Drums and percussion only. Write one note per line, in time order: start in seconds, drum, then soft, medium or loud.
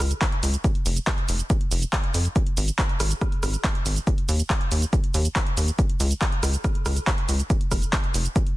0.00 cross-stick medium
0.00 open hi-hat loud
0.00 shaker medium
0.11 closed hi-hat soft
0.11 shaker soft
0.22 kick loud
0.22 clap loud
0.22 closed hi-hat medium
0.22 shaker soft
0.32 closed hi-hat soft
0.43 open hi-hat loud
0.43 shaker medium
0.54 closed hi-hat soft
0.54 shaker soft
0.64 kick loud
0.64 closed hi-hat medium
0.64 shaker soft
0.75 closed hi-hat soft
0.86 open hi-hat loud
0.86 shaker medium
0.96 closed hi-hat soft
0.96 shaker soft
1.07 kick loud
1.07 clap loud
1.07 closed hi-hat medium
1.07 shaker soft
1.18 closed hi-hat soft
1.29 open hi-hat loud
1.29 shaker medium
1.39 closed hi-hat soft
1.39 shaker soft
1.50 kick loud
1.50 closed hi-hat medium
1.50 shaker soft
1.61 closed hi-hat soft
1.71 open hi-hat loud
1.71 shaker medium
1.82 closed hi-hat soft
1.82 shaker soft
1.93 kick loud
1.93 clap loud
1.93 closed hi-hat medium
1.93 shaker soft
2.04 closed hi-hat soft
2.14 open hi-hat loud
2.14 shaker medium
2.25 closed hi-hat soft
2.25 shaker soft
2.36 kick loud
2.36 closed hi-hat medium
2.36 shaker soft
2.47 closed hi-hat soft
2.57 open hi-hat loud
2.57 shaker medium
2.68 closed hi-hat soft
2.68 shaker soft
2.79 kick loud
2.79 clap loud
2.79 closed hi-hat medium
2.79 shaker soft
2.89 closed hi-hat soft
3.00 cross-stick medium
3.00 open hi-hat loud
3.00 shaker medium
3.11 closed hi-hat soft
3.11 shaker soft
3.21 kick loud
3.21 cross-stick medium
3.21 closed hi-hat medium
3.21 shaker soft
3.32 closed hi-hat soft
3.43 cross-stick medium
3.43 open hi-hat loud
3.43 shaker medium
3.54 closed hi-hat soft
3.54 shaker soft
3.64 kick loud
3.64 clap loud
3.64 closed hi-hat medium
3.64 shaker soft
3.75 closed hi-hat soft
3.86 open hi-hat loud
3.86 shaker medium
3.96 closed hi-hat soft
3.96 shaker soft
4.07 kick loud
4.07 closed hi-hat medium
4.07 shaker soft
4.18 closed hi-hat soft
4.29 open hi-hat loud
4.29 shaker medium
4.39 closed hi-hat soft
4.39 shaker soft
4.50 kick loud
4.50 clap loud
4.50 closed hi-hat medium
4.50 shaker soft
4.61 closed hi-hat soft
4.72 open hi-hat loud
4.72 shaker medium
4.82 closed hi-hat soft
4.82 shaker soft
4.93 kick loud
4.93 closed hi-hat medium
4.93 shaker soft
5.04 closed hi-hat soft
5.14 open hi-hat loud
5.14 shaker medium
5.25 closed hi-hat soft
5.25 shaker soft
5.36 kick loud
5.36 clap loud
5.36 closed hi-hat medium
5.36 shaker soft
5.47 closed hi-hat soft
5.57 open hi-hat loud
5.57 shaker medium
5.68 closed hi-hat soft
5.68 shaker soft
5.79 kick loud
5.79 closed hi-hat medium
5.79 shaker soft
5.89 closed hi-hat soft
6.00 open hi-hat loud
6.00 shaker medium
6.11 closed hi-hat soft
6.11 shaker soft
6.22 kick loud
6.22 clap loud
6.22 closed hi-hat medium
6.22 shaker soft
6.32 closed hi-hat soft
6.43 cross-stick medium
6.43 open hi-hat loud
6.43 shaker medium
6.54 closed hi-hat soft
6.54 shaker soft
6.64 kick loud
6.64 cross-stick medium
6.64 closed hi-hat medium
6.64 shaker soft
6.75 closed hi-hat soft
6.86 cross-stick medium
6.86 open hi-hat loud
6.86 shaker medium
6.97 closed hi-hat soft
6.97 shaker soft
7.07 kick loud
7.07 clap loud
7.07 closed hi-hat loud
7.07 shaker soft
7.18 closed hi-hat soft
7.29 open hi-hat loud
7.29 shaker medium
7.39 closed hi-hat soft
7.39 shaker soft
7.50 kick loud
7.50 closed hi-hat loud
7.50 shaker soft
7.61 closed hi-hat soft
7.72 kick medium
7.72 cross-stick medium
7.72 open hi-hat loud
7.72 shaker medium
7.82 closed hi-hat soft
7.82 shaker soft
7.93 kick loud
7.93 clap loud
7.93 closed hi-hat loud
7.93 shaker soft
8.04 closed hi-hat soft
8.14 open hi-hat loud
8.14 shaker medium
8.25 closed hi-hat soft
8.25 shaker soft
8.36 kick loud
8.36 closed hi-hat loud
8.36 shaker soft
8.47 closed hi-hat soft